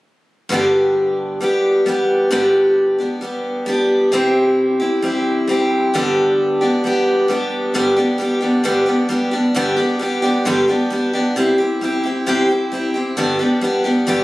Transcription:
0.49 G2 D3 G3 B3
0.53 D4 G4
1.41 G3 B3 D4 G4
1.86 G3 B3 D4 G4
2.31 G2 D3 G3 B3 D4 G4
2.98 G3 B3 D4 G4
3.21 G3 B3 D4 G4
3.66 G3 B3 D4 G4
4.12 C3 G3 C4 E4 G4
4.80 C4 E4 G4
5.02 G3 C4 E4 G4
5.48 G3 C4 E4 G4
5.94 G2 D3 G3 B3 D4 G4
6.61 G3 B3 D4 G4
6.84 G3 B3 D4 G4
7.28 G3 B3 D4 G4
7.74 G2 D3 G3 B3 D4 G4
7.96 G3 B3 D4 G4
8.18 G3 B3 D4 G4
8.41 G3 B3 D4 G4
8.64 G2 D3 G3 B3 D4 G4
8.86 G3 B3 D4 G4
9.09 G3 B3 D4 G4
9.31 G3 B3 D4 G4
9.54 G2 D3 G3 B3 D4 G4
9.76 G3 B3 D4 G4
9.99 G3 B3 D4 G4
10.22 G3 B3 D4 G4
10.45 G2 D3 G3 B3 D4 G4
10.68 G3 B3 D4 G4
10.90 G3 B3 D4 G4
11.13 G3 B3 D4 G4
11.36 C3 G3 C4 E4 G4
11.58 C4 E4 G4
11.81 G3 C4 E4 G4
12.03 C4 E4 G4
12.26 C3 G3 C4 E4 G4
12.49 C4 E4 G4
12.72 G3 C4 E4 G4
12.94 C4 E4 G4
13.17 G2 D3 G3 B3 D4 G4
13.39 G3 B3 D4 G4
13.61 G3 B3 D4 G4
13.84 G3 B3 D4 G4
14.07 G2 D3 G3 B3 D4 G4

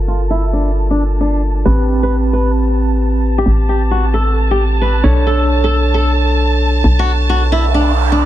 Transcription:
Already playing: G1 F4 A4 A#4 A5
0.08 F4
0.30 E4
0.53 D4
0.90 D4
1.20 D4
1.66 A1 C4 G4 B4 A5
2.03 B4
2.33 B4
3.38 G4
3.46 A1
3.69 G4
3.91 F#4
4.14 A4
4.51 G4
4.81 B4
5.04 B1 D4 A4 C#5
5.27 A4
5.64 A4
5.94 A4
6.84 B1
6.99 F#4
7.07 noise sweep
7.29 F#4
7.52 E4
7.74 D4
8.12 D4

